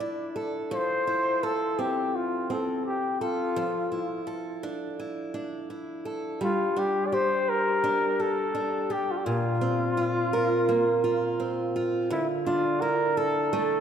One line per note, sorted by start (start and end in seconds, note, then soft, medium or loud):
0.00 0.71 F3 medium
0.00 0.80 D4 medium
0.00 1.07 E4 medium
0.00 0.35 A4 medium
0.00 0.37 D5 medium
0.36 1.43 A4 medium
0.71 3.56 F3 medium
0.71 1.45 C5 loud
1.07 3.59 E4 medium
1.43 3.21 A4 medium
1.43 1.81 A4 medium
1.79 2.49 C4 medium
1.79 2.17 G4 medium
2.16 2.52 F4 medium
2.50 3.65 C4 soft
2.50 2.85 A4 medium
2.85 3.18 G4 medium
3.21 4.24 F4 medium
3.21 4.26 A4 medium
3.56 6.41 F3 medium
3.92 4.98 E4 medium
4.27 6.04 A4 medium
4.63 5.34 D4 medium
5.00 5.69 E4 medium
5.34 6.76 D4 soft
5.70 6.49 E4 soft
6.05 6.49 A4 medium
6.41 9.26 G3 medium
6.41 6.80 F4 medium
6.76 7.83 D4 soft
6.76 7.08 G4 medium
7.06 7.15 D5 medium
7.12 8.18 G4 medium
7.12 7.51 C5 loud
7.49 8.22 A#4 medium
7.84 8.54 D4 medium
8.20 8.89 G4 medium
8.20 8.94 A4 medium
8.55 9.61 D4 soft
8.90 9.34 G4 medium
8.90 9.13 G4 medium
9.11 9.19 F4 medium
9.17 9.26 G4 medium
9.25 12.10 A#2 medium
9.25 11.76 F4 medium
9.61 11.38 C4 medium
9.97 11.03 F4 medium
10.33 12.19 A#4 medium
10.69 12.19 A#3 medium
11.04 11.75 F4 medium
11.40 12.19 C4 soft
11.76 12.82 F4 medium
12.10 13.80 D3 medium
12.10 12.28 E4 medium
12.46 13.80 D4 medium
12.46 12.82 F4 medium
12.81 13.80 E4 medium
12.81 13.18 A#4 loud
13.17 13.80 A4 medium
13.53 13.80 A3 medium